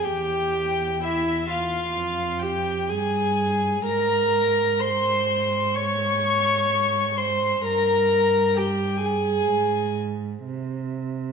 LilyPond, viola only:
\new Staff \with { instrumentName = "Viola" } { \time 4/4 \key aes \major \tempo 4 = 64 g'4 e'8 f'4 g'8 aes'4 | bes'4 c''4 des''4. c''8 | bes'4 g'8 aes'4 r4. | }